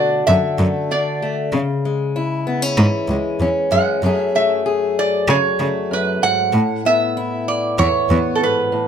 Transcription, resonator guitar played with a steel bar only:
0, 0, Header, 1, 2, 480
1, 0, Start_track
1, 0, Key_signature, 3, "major"
1, 0, Tempo, 626305
1, 1172, Time_signature, 4, 2, 24, 8
1, 6805, End_track
2, 0, Start_track
2, 0, Title_t, "Resonator guitar played with a steel bar"
2, 0, Program_c, 0, 25
2, 0, Note_on_c, 0, 74, 85
2, 189, Note_off_c, 0, 74, 0
2, 205, Note_on_c, 0, 76, 91
2, 701, Note_on_c, 0, 74, 68
2, 703, Note_off_c, 0, 76, 0
2, 1032, Note_off_c, 0, 74, 0
2, 2849, Note_on_c, 0, 78, 89
2, 3224, Note_off_c, 0, 78, 0
2, 3224, Note_on_c, 0, 76, 89
2, 3336, Note_off_c, 0, 76, 0
2, 3339, Note_on_c, 0, 76, 82
2, 3785, Note_off_c, 0, 76, 0
2, 3824, Note_on_c, 0, 74, 84
2, 4058, Note_off_c, 0, 74, 0
2, 4061, Note_on_c, 0, 73, 83
2, 4548, Note_on_c, 0, 71, 73
2, 4551, Note_off_c, 0, 73, 0
2, 4775, Note_on_c, 0, 78, 91
2, 4787, Note_off_c, 0, 71, 0
2, 5257, Note_off_c, 0, 78, 0
2, 5260, Note_on_c, 0, 76, 85
2, 5731, Note_off_c, 0, 76, 0
2, 5734, Note_on_c, 0, 74, 76
2, 5966, Note_off_c, 0, 74, 0
2, 5969, Note_on_c, 0, 73, 80
2, 6402, Note_on_c, 0, 69, 62
2, 6410, Note_off_c, 0, 73, 0
2, 6454, Note_off_c, 0, 69, 0
2, 6464, Note_on_c, 0, 71, 75
2, 6793, Note_off_c, 0, 71, 0
2, 6805, End_track
0, 0, End_of_file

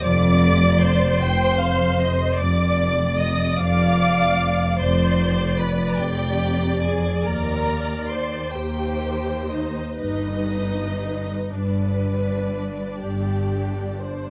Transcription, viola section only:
0, 0, Header, 1, 2, 480
1, 0, Start_track
1, 0, Tempo, 779221
1, 29, Time_signature, 12, 3, 24, 8
1, 1468, Tempo, 803213
1, 3868, Tempo, 848656
1, 4828, Tempo, 910470
1, 5308, Tempo, 975610
1, 5788, Tempo, 1023891
1, 6748, Tempo, 980392
1, 7859, End_track
2, 0, Start_track
2, 0, Title_t, "Viola section"
2, 0, Program_c, 0, 48
2, 24, Note_on_c, 0, 74, 99
2, 496, Note_off_c, 0, 74, 0
2, 498, Note_on_c, 0, 72, 102
2, 1463, Note_off_c, 0, 72, 0
2, 1468, Note_on_c, 0, 74, 96
2, 1944, Note_on_c, 0, 75, 83
2, 1950, Note_off_c, 0, 74, 0
2, 2188, Note_on_c, 0, 74, 99
2, 2189, Note_off_c, 0, 75, 0
2, 2896, Note_off_c, 0, 74, 0
2, 2909, Note_on_c, 0, 72, 91
2, 3376, Note_off_c, 0, 72, 0
2, 3386, Note_on_c, 0, 71, 74
2, 3625, Note_off_c, 0, 71, 0
2, 3633, Note_on_c, 0, 67, 79
2, 4107, Note_off_c, 0, 67, 0
2, 4120, Note_on_c, 0, 68, 73
2, 4346, Note_off_c, 0, 68, 0
2, 4349, Note_on_c, 0, 70, 74
2, 4832, Note_off_c, 0, 70, 0
2, 4836, Note_on_c, 0, 72, 66
2, 5067, Note_on_c, 0, 67, 76
2, 5069, Note_off_c, 0, 72, 0
2, 5543, Note_off_c, 0, 67, 0
2, 5552, Note_on_c, 0, 63, 64
2, 5786, Note_off_c, 0, 63, 0
2, 5792, Note_on_c, 0, 63, 76
2, 6500, Note_off_c, 0, 63, 0
2, 6516, Note_on_c, 0, 62, 55
2, 7859, Note_off_c, 0, 62, 0
2, 7859, End_track
0, 0, End_of_file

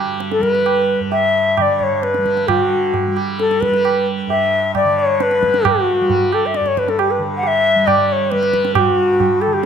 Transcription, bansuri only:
0, 0, Header, 1, 2, 480
1, 0, Start_track
1, 0, Tempo, 455235
1, 2622, Time_signature, 7, 2, 24, 8
1, 5484, Tempo, 443131
1, 10311, End_track
2, 0, Start_track
2, 0, Title_t, "Bansuri"
2, 0, Program_c, 0, 73
2, 331, Note_on_c, 0, 69, 81
2, 442, Note_on_c, 0, 71, 93
2, 458, Note_off_c, 0, 69, 0
2, 1052, Note_off_c, 0, 71, 0
2, 1177, Note_on_c, 0, 76, 92
2, 1659, Note_off_c, 0, 76, 0
2, 1659, Note_on_c, 0, 76, 80
2, 1704, Note_on_c, 0, 74, 87
2, 1715, Note_off_c, 0, 76, 0
2, 1886, Note_off_c, 0, 74, 0
2, 1886, Note_on_c, 0, 74, 70
2, 1934, Note_on_c, 0, 73, 76
2, 1944, Note_off_c, 0, 74, 0
2, 2140, Note_on_c, 0, 71, 74
2, 2156, Note_off_c, 0, 73, 0
2, 2615, Note_on_c, 0, 66, 71
2, 2631, Note_off_c, 0, 71, 0
2, 3338, Note_off_c, 0, 66, 0
2, 3578, Note_on_c, 0, 69, 79
2, 3807, Note_on_c, 0, 71, 93
2, 3823, Note_off_c, 0, 69, 0
2, 4290, Note_off_c, 0, 71, 0
2, 4532, Note_on_c, 0, 76, 90
2, 4975, Note_off_c, 0, 76, 0
2, 5014, Note_on_c, 0, 74, 93
2, 5259, Note_on_c, 0, 73, 84
2, 5275, Note_off_c, 0, 74, 0
2, 5504, Note_on_c, 0, 71, 86
2, 5520, Note_off_c, 0, 73, 0
2, 5990, Note_on_c, 0, 66, 85
2, 6006, Note_off_c, 0, 71, 0
2, 6715, Note_on_c, 0, 69, 73
2, 6731, Note_off_c, 0, 66, 0
2, 6849, Note_on_c, 0, 76, 78
2, 6865, Note_off_c, 0, 69, 0
2, 6960, Note_on_c, 0, 74, 79
2, 6977, Note_off_c, 0, 76, 0
2, 7078, Note_on_c, 0, 73, 78
2, 7094, Note_off_c, 0, 74, 0
2, 7199, Note_on_c, 0, 71, 73
2, 7215, Note_off_c, 0, 73, 0
2, 7316, Note_on_c, 0, 69, 71
2, 7333, Note_off_c, 0, 71, 0
2, 7428, Note_on_c, 0, 67, 67
2, 7445, Note_off_c, 0, 69, 0
2, 7549, Note_on_c, 0, 71, 68
2, 7565, Note_off_c, 0, 67, 0
2, 7665, Note_off_c, 0, 71, 0
2, 7833, Note_on_c, 0, 78, 71
2, 7905, Note_off_c, 0, 78, 0
2, 7905, Note_on_c, 0, 78, 96
2, 7945, Note_on_c, 0, 76, 104
2, 7955, Note_off_c, 0, 78, 0
2, 8374, Note_on_c, 0, 74, 95
2, 8391, Note_off_c, 0, 76, 0
2, 8611, Note_off_c, 0, 74, 0
2, 8611, Note_on_c, 0, 74, 78
2, 8648, Note_on_c, 0, 73, 84
2, 8659, Note_off_c, 0, 74, 0
2, 8851, Note_on_c, 0, 71, 88
2, 8868, Note_off_c, 0, 73, 0
2, 9320, Note_off_c, 0, 71, 0
2, 9326, Note_on_c, 0, 67, 81
2, 9367, Note_on_c, 0, 66, 88
2, 9378, Note_off_c, 0, 67, 0
2, 10046, Note_on_c, 0, 69, 75
2, 10062, Note_off_c, 0, 66, 0
2, 10176, Note_on_c, 0, 67, 73
2, 10192, Note_off_c, 0, 69, 0
2, 10311, Note_off_c, 0, 67, 0
2, 10311, End_track
0, 0, End_of_file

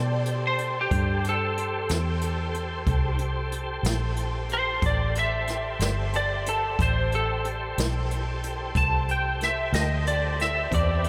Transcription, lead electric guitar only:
0, 0, Header, 1, 2, 480
1, 0, Start_track
1, 0, Key_signature, 0, "minor"
1, 0, Tempo, 653595
1, 2111, Time_signature, 12, 3, 24, 8
1, 8143, End_track
2, 0, Start_track
2, 0, Title_t, "Lead electric guitar"
2, 0, Program_c, 0, 29
2, 0, Note_on_c, 0, 74, 80
2, 297, Note_off_c, 0, 74, 0
2, 346, Note_on_c, 0, 72, 64
2, 562, Note_off_c, 0, 72, 0
2, 594, Note_on_c, 0, 67, 59
2, 923, Note_off_c, 0, 67, 0
2, 947, Note_on_c, 0, 69, 70
2, 2339, Note_off_c, 0, 69, 0
2, 3330, Note_on_c, 0, 72, 76
2, 3553, Note_off_c, 0, 72, 0
2, 3568, Note_on_c, 0, 74, 65
2, 3792, Note_off_c, 0, 74, 0
2, 3811, Note_on_c, 0, 76, 76
2, 4499, Note_off_c, 0, 76, 0
2, 4525, Note_on_c, 0, 74, 61
2, 4751, Note_off_c, 0, 74, 0
2, 4764, Note_on_c, 0, 69, 80
2, 4990, Note_off_c, 0, 69, 0
2, 5008, Note_on_c, 0, 72, 68
2, 5232, Note_off_c, 0, 72, 0
2, 5250, Note_on_c, 0, 69, 72
2, 5474, Note_off_c, 0, 69, 0
2, 6443, Note_on_c, 0, 81, 77
2, 6670, Note_off_c, 0, 81, 0
2, 6692, Note_on_c, 0, 79, 65
2, 6914, Note_off_c, 0, 79, 0
2, 6931, Note_on_c, 0, 76, 68
2, 7153, Note_off_c, 0, 76, 0
2, 7156, Note_on_c, 0, 75, 72
2, 7386, Note_off_c, 0, 75, 0
2, 7399, Note_on_c, 0, 74, 71
2, 7628, Note_off_c, 0, 74, 0
2, 7648, Note_on_c, 0, 76, 74
2, 7872, Note_off_c, 0, 76, 0
2, 7891, Note_on_c, 0, 74, 64
2, 8114, Note_off_c, 0, 74, 0
2, 8143, End_track
0, 0, End_of_file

